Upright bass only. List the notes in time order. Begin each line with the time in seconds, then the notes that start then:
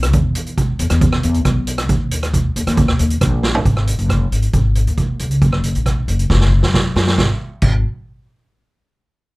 Already playing: B1
0.13 E2
0.79 E2
0.91 E2
1.24 E2
1.45 B1
1.89 D#2
2.56 D#2
2.67 D#2
3.00 D#2
3.21 A#1
3.65 G#1
3.99 F#1
4.32 G#1
4.54 G#1
4.87 D#2
5.20 C#2
5.42 F#1
5.76 A#1
6.08 F#1
6.30 F#1
6.63 F#2
6.96 F#2
7.18 G#1
7.62 G#1